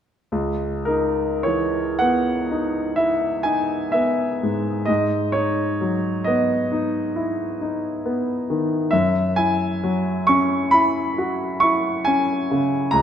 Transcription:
0.32 C#2
0.85 D#4 A#4
1.43 E3 C#5
1.99 B3 F#5
2.51 D#4
2.96 E4 E5
3.43 D#4 G#5
3.92 B3 E5
4.43 G#2
4.85 G#2 D#5
5.32 D#4 C#5
5.81 F#3
6.24 B3 D#5
6.72 D#4
7.16 E4
7.61 D#4
8.06 B3
8.50 D#3
8.91 F#2 E5
9.36 E4 G#5
9.83 F#3
10.27 C#4 C#6
10.71 E4 B5
11.18 F#4
11.60 E4 C#6
12.05 C#4 G#5
12.51 C#3
12.91 C#2 A#5

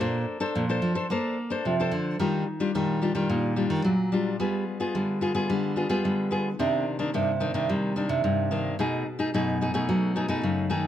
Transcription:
0.00 A#2 A#3 D4 A4 C5
0.40 D4 A4 C5
0.55 A#2 F3
0.69 D4 A4 C5
0.82 F3
0.95 D4 A4 C5
1.10 A#3 D4 A4 C5
1.50 D4 A4 C5
1.65 C3 F3
1.80 D4 A4 C5
1.91 D3
2.19 D#3 G3 D4 F4
2.60 G3 D4 F4
2.75 A#2 D#3 G3 D4 F4
3.02 G3 D4 F4
3.15 D#3 G3 D4 F4
3.29 A#2 D#3
3.56 G3 D4 F4
3.70 D#3
3.85 A#2 F#3
4.12 G3 D4 F4
4.39 G3 B3 F4 G#4
4.80 B3 F4 G#4
4.95 D3 G3
5.21 B3 F4 G#4
5.35 G3 B3 F4 G#4
5.49 D3 G3
5.76 B3 F4 G#4
5.89 G3 B3 F4 G#4
6.04 D3 G3
6.31 B3 F4 G#4
6.59 C3 D#3 A#3 D4
6.99 D#3 A#3 D4
7.14 G2 C3 D#3 A#3 D4
7.40 D#3 A#3 D4
7.54 C3 D#3 A#3 D4
7.69 C3 G3
7.96 D#3 A#3 D4
8.09 C3
8.24 G2 C3
8.51 D#3 A#3 D4
8.79 B2 A3 D#4 G#4
9.19 A3 D#4 G#4
9.34 F#2 B2 A3 D#4 G#4
9.61 A3 D#4 G#4
9.74 B2 A3 D#4 G#4
9.89 B2 F#3
10.16 A3 D#4 G#4
10.28 B2 A3 D#4 G#4
10.43 F#2 C#3
10.70 D#3 A3 D#4 G#4

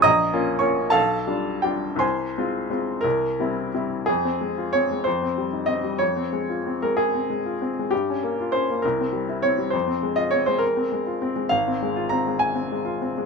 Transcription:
0.02 A#1 D#5 A#5 D#6
0.33 A#3 C#4 F4
0.59 A#3 C#4 F4 C#5 C#6
0.90 B1 A4 F5 A5
1.27 G3 D4 F4
1.62 G3 D4 F4 G4 G5
1.96 C2 C5 G#5 C6
2.38 G#3 C4 F4
2.70 G#3 C4 F4
3.01 C2 A#4
3.40 G3 C4 E4
3.74 G3 C4 E4
4.06 F2 G#4
4.25 C4
4.41 G#3
4.58 F4
4.73 C4 C#5
4.91 G#3
5.04 F2 C5
5.22 C4
5.38 G3
5.53 D#4
5.66 C4 D#5
5.84 G3
5.98 F2 C#5
6.17 C4
6.33 G#3
6.50 F4
6.66 C4
6.82 G#3 A#4
6.97 G#4
7.14 C4
7.30 G#3
7.46 F4
7.62 C4
7.79 G#3
7.91 G2 G4
8.10 C#4
8.23 A#3
8.40 F4
8.52 C#4 C5
8.70 A#3
8.82 C2 A#4
9.01 C4
9.12 G3
9.29 E4
9.42 C4 C#5
9.58 G3
9.70 F2 C5
9.87 C4
10.03 G#3
10.16 F4 D#5
10.31 C4 C#5
10.46 G#3 C5
10.58 A#4
10.77 C4
10.92 G#3
11.06 F4
11.22 C4
11.36 G#3
11.49 G#1 F5
11.68 C4
11.82 G#3
11.96 F4
12.09 C4 A#5
12.27 G#3
12.39 G#5
12.55 C4
12.72 G#3
12.85 F4
13.02 C4
13.18 G#3

